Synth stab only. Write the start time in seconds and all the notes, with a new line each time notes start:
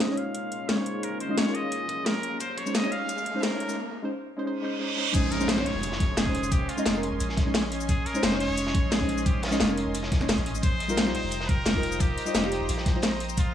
0.07 G#3 C#4 D#4
0.12 C#5
0.75 G#3 C#4 D#4
0.80 C5
1.28 G#3 C#4 D#4 D#5
1.44 G#3 C#4 D#4
1.49 A#4
2.65 G#3 C#4 D#4 C5
2.81 G#3 C#4 D#4
2.86 C#5
3.34 G#3 C#4 D#4 C5
3.50 G#3 C#4 D#4
3.55 C#5
4.02 G#3 C#4 D#4 C5
4.36 G#3 C#4 D#4 C5
4.45 G#3 C#4 D#4 C5
4.62 G#3 C#4 D#4 C5
4.79 G#3 C#4 D#4 C5
4.96 G#3 C#4 D#4 C5
5.13 G#3 C#4 D#4 C5
5.39 G#3 C#4 D#4 C5
5.55 G#3 C#4 D#4
5.60 C#5
6.24 G#3 C#4 D#4
6.29 C5
6.77 G#3 C#4 D#4 D#5
6.93 G#3 C#4 D#4
6.97 A#4
7.45 G#3 C#4 D#4 C#5
8.14 G#3 C#4 D#4 C5
8.30 G#3 C#4 D#4
8.35 C#5
8.98 G#3 C#4 D#4
9.03 C5
9.51 G#3 C#4 D#4 D#5
9.67 G#3 C#4 D#4
9.72 A#4
10.19 G#3 C#4 D#4 C#5
10.88 G3 D#4 F4 A#4
11.04 G3 D#4 F4
11.09 C5
11.73 G3 D#4 F4
11.78 A#4
12.25 G3 D#4 F4 D#5
12.41 G3 D#4 F4
12.46 G4
12.94 G3 D#4 F4 C5